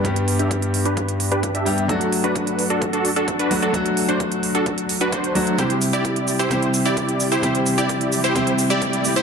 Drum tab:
HH |xxoxxxoxxxoxxxox|xxoxxxoxxxoxxxox|xxoxxxoxxxoxxxox|xxoxxxoxxxoxxxox|
SH |----------------|----------------|----------------|x-xxx-xxx-xxx-xx|
BD |o---o---o---o---|o---o---o---o---|o---o---o---o---|o---o---o---o---|

HH |xxoxxxoxxxoxxxox|
SH |x-xxx-xxx-xxx-xx|
BD |o---o---o---o---|